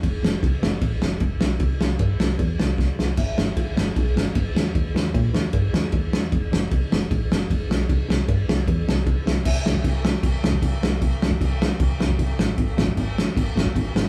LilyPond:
<<
  \new Staff \with { instrumentName = "FM bass" } { \clef bass \time 4/4 \key f \lydian \tempo 4 = 153 f,,8 f,,8 c,8 f,,8 a,,8 f,,8 f,,8 b,,8 | c,8 c,8 g,8 c,8 e,8 c,8 c,8 c,8 | g,,8 g,,8 d,8 g,,8 b,,8 g,,8 g,,8 ees,8 | ees,8 ees,8 bes,8 ees,8 g,8 ees,8 ees,8 ees,8 |
f,,8 f,,8 c,8 f,,8 a,,8 f,,8 f,,8 b,,8 | c,8 c,8 g,8 c,8 e,8 c,8 c,8 c,8 | c,8 c,8 c,4 c,8 c,8 c,8 c,8 | c,4 c,4 c,8 c,8 c,8 a,,8 |
aes,,8 aes,,8 aes,,4 aes,,8 aes,,8 aes,,8 aes,,8 | }
  \new DrumStaff \with { instrumentName = "Drums" } \drummode { \time 4/4 <bd cymr>8 sn8 <bd cymr>8 sn8 <bd cymr>8 sn8 <bd cymr>8 sn8 | <bd cymr>8 sn8 <bd cymr>8 sn8 <bd cymr>8 sn8 <bd sn>8 sn8 | <cymc bd cymr>8 sn8 <bd cymr>8 sn8 <bd cymr>8 sn8 <bd cymr>8 sn8 | <bd cymr>8 sn8 <bd cymr>8 sn8 <bd cymr>8 sn8 <bd cymr>8 sn8 |
<bd cymr>8 sn8 <bd cymr>8 sn8 <bd cymr>8 sn8 <bd cymr>8 sn8 | <bd cymr>8 sn8 <bd cymr>8 sn8 <bd cymr>8 sn8 <bd cymr>8 sn8 | <cymc bd>8 sn16 bd16 <cymc bd>8 sn8 <cymc bd>8 sn16 bd16 <cymc bd>8 sn8 | <cymc bd>8 sn16 bd16 <cymc bd>8 sn8 <cymc bd>8 sn16 bd16 <cymc bd>8 sn8 |
<cymc bd>8 sn16 bd16 <cymc bd>8 sn8 <cymc bd>8 sn16 bd16 <cymc bd>8 sn8 | }
>>